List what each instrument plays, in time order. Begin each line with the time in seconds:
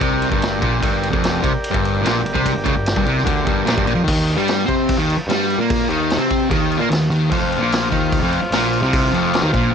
Already playing: distorted electric guitar C3, transistor combo organ G4 A#4 D5
0.01 picked electric bass C2, kick, ride
0.22 ride
0.29 picked electric bass G1, distorted electric guitar G2, kick
0.42 snare, ride
0.59 picked electric bass A#1, distorted electric guitar A#2, kick, ride
0.80 picked electric bass G1, distorted electric guitar G2, transistor combo organ G4 A#4 D5, kick, ride
1.03 ride
1.10 picked electric bass F1, distorted electric guitar F2, kick
1.24 snare, ride
1.41 picked electric bass C2, distorted electric guitar C3, kick, ride
1.50 muted distorted electric guitar stroke, muted picked electric bass stroke
1.64 ride
1.71 picked electric bass G1, distorted electric guitar G2, kick
1.85 ride
2.01 picked electric bass A#1, distorted electric guitar A#2
2.06 snare, ride
2.22 picked electric bass G1, distorted electric guitar G2
2.26 ride
2.33 picked electric bass C2, distorted electric guitar C3, kick
2.46 kick, ride
2.53 picked electric bass G1, distorted electric guitar G2
2.64 picked electric bass C#2, distorted electric guitar C#3, kick, ride
2.76 picked electric bass G1, distorted electric guitar G2
2.86 snare, ride
2.96 picked electric bass G1, distorted electric guitar G2, kick
3.05 picked electric bass C2, distorted electric guitar C3, ride
3.18 snare
3.24 picked electric bass D2, distorted electric guitar D3, kick, ride
3.44 picked electric bass G1, distorted electric guitar G2, kick, ride
3.65 picked electric bass A#1, distorted electric guitar A#2, snare, ride
3.75 picked electric bass G1, distorted electric guitar G2, kick
3.85 picked electric bass A#1, distorted electric guitar A#2, ride
3.95 picked electric bass F2, distorted electric guitar F3
4.04 distorted electric guitar D#3, kick, crash
4.08 picked electric bass D#2
4.28 crash
4.36 picked electric bass G2, distorted electric guitar G3
4.48 snare, crash
4.66 picked electric bass C3, distorted electric guitar C4, kick, crash
4.89 kick, crash
4.97 picked electric bass D#2, distorted electric guitar D#3
5.10 crash
5.18 muted distorted electric guitar stroke, muted picked electric bass stroke
5.27 picked electric bass G2, distorted electric guitar G3, crash
5.31 snare
5.50 crash
5.58 picked electric bass A#2, distorted electric guitar A#3
5.70 kick, crash
5.89 picked electric bass D#2, distorted electric guitar D#3, crash
6.10 snare, crash
6.17 picked electric bass C3, distorted electric guitar C4
6.30 kick, crash
6.50 picked electric bass D#2, distorted electric guitar D#3, kick, crash
6.72 crash
6.78 picked electric bass A#2, distorted electric guitar A#3
6.89 picked electric bass D#2, distorted electric guitar D#3, snare, crash
7.10 picked electric bass D#2, distorted electric guitar D#3, crash
7.29 picked electric bass F1, distorted electric guitar F2, transistor combo organ F4 C5 F5, kick, crash
7.52 crash
7.58 picked electric bass A#1, distorted electric guitar A#2
7.72 snare, crash
7.90 picked electric bass D#2, distorted electric guitar D#3, kick, crash
8.12 kick, crash
8.19 picked electric bass F1, distorted electric guitar F2
8.33 crash
8.42 muted distorted electric guitar stroke
8.51 picked electric bass A#1, distorted electric guitar A#2, snare, crash
8.73 crash
8.81 picked electric bass C2, distorted electric guitar C3
8.93 kick, crash
9.11 picked electric bass F1, distorted electric guitar F2, crash
9.34 snare, crash
9.42 picked electric bass D#2, distorted electric guitar D#3
9.53 picked electric bass A#1, distorted electric guitar A#2, kick, crash
9.70 distorted electric guitar F2